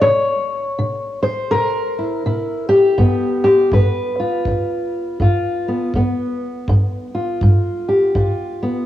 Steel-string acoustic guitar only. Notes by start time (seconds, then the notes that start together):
0.01 C#5
0.06 C3
0.79 C3
1.23 C5
1.51 C3 A#4
1.99 E4
2.26 C3 E4
2.69 G4
2.98 G2 B3
3.44 G4
3.73 G2 B4
4.20 F4
4.47 G2
5.20 G2 F4
5.68 B3
5.95 G2 B3
6.69 G2
7.14 F4
7.42 G2
7.89 G4
8.15 G2 F4
8.63 B3